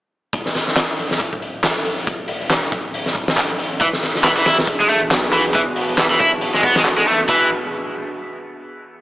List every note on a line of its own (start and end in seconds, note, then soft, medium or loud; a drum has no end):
0.33 0.49 E1 loud
0.33 kick loud
0.33 closed hi-hat medium
0.46 snare soft
0.55 snare soft
0.55 closed hi-hat medium
0.68 snare soft
0.76 snare loud
0.76 clap loud
0.76 closed hi-hat medium
0.99 2.35 D1 loud
0.99 closed hi-hat medium
1.11 snare medium
1.20 kick loud
1.20 closed hi-hat medium
1.33 kick medium
1.42 closed hi-hat medium
1.64 snare loud
1.64 clap loud
1.64 closed hi-hat medium
1.85 closed hi-hat medium
1.98 closed hi-hat soft
2.07 kick loud
2.07 closed hi-hat medium
2.28 closed hi-hat medium
2.41 2.68 E1 medium
2.41 closed hi-hat soft
2.50 snare loud
2.50 clap loud
2.50 closed hi-hat medium
2.63 closed hi-hat soft
2.72 4.09 D1 loud
2.72 kick medium
2.72 closed hi-hat medium
2.94 closed hi-hat medium
3.06 snare soft
3.15 kick medium
3.15 closed hi-hat medium
3.28 snare loud
3.37 clap loud
3.37 closed hi-hat medium
3.59 closed hi-hat medium
3.81 7.25 E3 medium
3.81 3.87 E3 medium
3.81 7.25 B3 medium
3.81 7.25 D4 medium
3.81 7.25 F#4 medium
3.81 7.25 G#4 medium
3.81 kick loud
3.81 closed hi-hat medium
3.93 snare medium
4.03 snare soft
4.03 closed hi-hat medium
4.15 4.41 E1 medium
4.15 snare soft
4.24 4.30 E3 loud
4.24 snare loud
4.24 clap loud
4.24 closed hi-hat loud
4.37 4.45 E3 medium
4.46 5.03 D1 loud
4.46 4.56 E4 loud
4.46 snare loud
4.46 closed hi-hat medium
4.59 snare loud
4.59 closed hi-hat medium
4.67 kick loud
4.67 closed hi-hat medium
4.80 4.89 G#3 medium
4.80 kick medium
4.89 4.99 A3 loud
4.89 closed hi-hat medium
5.02 5.61 B1 loud
5.11 snare loud
5.11 clap loud
5.11 closed hi-hat medium
5.33 5.43 E3 loud
5.33 closed hi-hat medium
5.46 closed hi-hat soft
5.54 5.61 E3 medium
5.54 kick loud
5.54 closed hi-hat medium
5.76 closed hi-hat medium
5.89 6.15 E1 medium
5.89 closed hi-hat soft
5.98 6.04 E3 loud
5.98 snare loud
5.98 clap loud
5.98 closed hi-hat medium
6.11 6.19 E3 medium
6.11 closed hi-hat soft
6.20 7.24 D1 loud
6.20 6.30 E4 loud
6.20 kick medium
6.20 closed hi-hat medium
6.41 closed hi-hat medium
6.54 6.63 G#3 medium
6.54 snare soft
6.63 6.74 B3 medium
6.63 kick loud
6.63 closed hi-hat medium
6.76 6.81 G#3 medium
6.76 snare loud
6.85 clap loud
6.85 closed hi-hat medium
6.98 7.05 G#3 medium
7.07 7.19 A3 medium
7.29 7.49 E1 loud
7.29 7.49 E3 medium
7.29 kick loud
7.29 splash medium